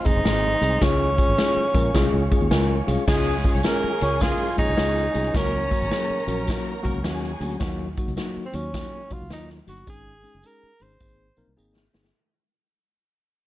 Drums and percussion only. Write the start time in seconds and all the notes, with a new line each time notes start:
0.05 kick, closed hi-hat, tambourine
0.25 snare, closed hi-hat, tambourine
0.62 closed hi-hat, tambourine
0.81 kick, snare, closed hi-hat, tambourine
1.18 kick, closed hi-hat, tambourine
1.38 snare, closed hi-hat, tambourine
1.74 kick, closed hi-hat, tambourine
1.94 kick, snare, closed hi-hat, tambourine
2.31 kick, closed hi-hat, tambourine
2.51 snare, closed hi-hat, tambourine
2.88 closed hi-hat, tambourine
3.07 kick, snare, crash, tambourine
3.44 kick, closed hi-hat, tambourine
3.55 closed hi-hat
3.63 snare, closed hi-hat, tambourine
4.00 closed hi-hat, tambourine
4.21 kick, snare, closed hi-hat, tambourine
4.58 kick, closed hi-hat, tambourine
4.78 snare, closed hi-hat, tambourine
4.97 snare
5.14 closed hi-hat, tambourine
5.24 closed hi-hat
5.35 kick, snare, closed hi-hat, tambourine
5.71 kick, closed hi-hat, tambourine
5.91 snare, closed hi-hat, tambourine
6.28 closed hi-hat, tambourine
6.47 kick, snare, closed hi-hat, tambourine
6.84 kick, closed hi-hat, tambourine
7.04 snare, closed hi-hat, tambourine
7.23 snare
7.41 closed hi-hat, tambourine
7.50 closed hi-hat
7.60 kick, snare, closed hi-hat, tambourine
7.97 kick, closed hi-hat, tambourine
8.08 closed hi-hat
8.17 snare, closed hi-hat, tambourine
8.53 closed hi-hat, tambourine
8.74 kick, snare, closed hi-hat, tambourine
9.10 kick, closed hi-hat, tambourine
9.30 snare, closed hi-hat, tambourine
9.50 snare
9.67 closed hi-hat, tambourine
9.77 closed hi-hat
9.87 kick, tambourine
10.24 tambourine
10.43 tambourine
10.80 tambourine
11.00 kick, tambourine
11.37 tambourine
11.58 tambourine
11.76 snare
11.94 snare, tambourine
12.04 snare